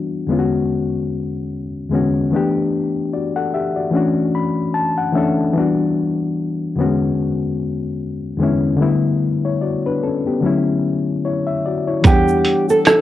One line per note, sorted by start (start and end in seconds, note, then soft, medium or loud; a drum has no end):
0.00 0.29 E3 medium
0.00 0.29 G3 medium
0.00 0.29 B3 medium
0.00 0.31 D4 medium
0.00 0.31 F#4 medium
0.27 1.63 E2 medium
0.27 1.64 D3 medium
0.27 1.64 G#3 medium
0.27 1.65 B3 medium
0.31 1.66 C#4 medium
0.31 0.38 F4 medium
0.39 1.69 F#4 medium
1.89 2.25 E2 medium
1.89 2.26 D3 medium
1.89 2.26 G#3 medium
1.89 2.26 B3 medium
1.94 2.27 C#4 medium
1.94 2.28 F#4 medium
2.31 3.67 E3 medium
2.31 3.67 A3 medium
2.31 3.68 B3 medium
2.35 3.69 D4 medium
2.35 3.15 G4 medium
3.13 3.35 F#4 soft
3.13 3.35 D5 medium
3.36 3.53 A4 soft
3.36 3.53 F#5 medium
3.54 3.76 G4 medium
3.54 3.76 E5 medium
3.76 3.95 F#4 soft
3.76 4.15 D5 medium
3.91 4.95 E3 medium
3.91 4.96 A3 medium
3.91 4.97 C#4 medium
3.95 4.97 D4 medium
3.95 4.98 F#4 medium
4.35 4.73 B5 medium
4.74 4.96 A5 medium
4.98 5.14 F#5 medium
5.12 5.48 E3 medium
5.12 5.49 A3 medium
5.12 5.50 C#4 medium
5.12 5.53 E5 medium
5.16 5.51 D4 medium
5.16 5.51 A4 medium
5.53 6.77 E3 medium
5.53 6.77 G3 medium
5.53 6.78 B3 medium
5.58 6.79 D4 medium
5.58 6.79 F#4 medium
6.76 8.12 E2 medium
6.76 8.13 D3 medium
6.76 6.85 F#3 medium
6.76 8.14 B3 medium
6.80 8.14 C#4 medium
6.80 8.15 F#4 medium
6.84 8.17 G#3 medium
8.38 8.73 E2 medium
8.38 8.74 D3 medium
8.38 8.74 G#3 medium
8.38 8.75 B3 medium
8.42 8.76 C#4 medium
8.42 8.76 E4 medium
8.77 10.14 D3 medium
8.77 10.15 G3 medium
8.77 10.15 A3 medium
8.81 9.21 B3 medium
8.81 9.22 E4 medium
9.45 9.62 E4 soft
9.45 9.61 C#5 medium
9.61 9.84 F#4 soft
9.61 9.83 D5 medium
9.86 10.03 D4 medium
9.86 10.02 B4 medium
10.03 10.25 C#4 medium
10.03 10.25 A4 medium
10.27 10.65 B3 soft
10.27 10.64 G4 medium
10.40 11.44 D3 medium
10.40 11.45 F#3 medium
10.40 11.46 A3 medium
10.40 11.46 C#4 medium
10.46 10.85 E4 medium
11.25 11.47 E4 soft
11.25 11.46 C#5 medium
11.47 11.64 E5 medium
11.66 11.87 F#4 medium
11.66 11.87 D5 medium
11.87 12.26 E4 medium
11.87 12.26 C#5 medium
12.02 12.42 E2 loud
12.02 13.01 E3 medium
12.02 13.01 G3 medium
12.02 13.01 B3 medium
12.02 kick loud
12.02 closed hi-hat medium
12.02 shaker medium
12.06 13.01 D4 medium
12.06 12.66 G4 medium
12.06 13.01 F#5 medium
12.28 shaker soft
12.45 closed hi-hat medium
12.69 12.85 A4 medium
12.69 shaker soft
12.85 13.01 A4 medium
12.85 cross-stick loud
12.85 closed hi-hat medium
12.85 shaker medium